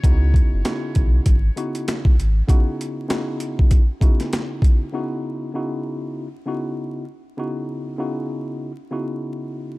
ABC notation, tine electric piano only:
X:1
M:4/4
L:1/8
Q:"Swing 16ths" 1/4=98
K:C#m
V:1 name="Tine electric piano"
[C,B,DEF]2 [C,B,DEF]2 z [C,B,DEF]2 z | [C,B,DEF]2 [C,B,DEF]2 z [C,B,DEF]3 | [C,B,DEF]2 [C,B,DEF]2 z [C,B,DEF]2 z | [C,B,DEF]2 [C,B,DEF]2 z [C,B,DEF]3 |]